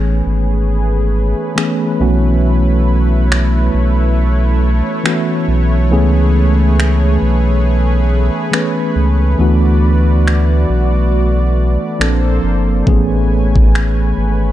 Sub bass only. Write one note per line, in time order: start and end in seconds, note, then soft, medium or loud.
0.00 0.22 A1 medium
0.26 1.34 G#1 medium
2.00 3.70 B1 loud
3.74 4.82 B1 medium
5.48 5.93 B1 medium
5.91 7.18 C#2 loud
7.22 8.30 B1 medium
8.96 9.35 C#2 medium
9.39 10.65 D2 loud
10.69 11.78 B1 medium
12.00 12.40 A#1 loud
12.43 12.83 G1 medium
12.87 14.13 A1 medium
14.17 14.52 G#1 medium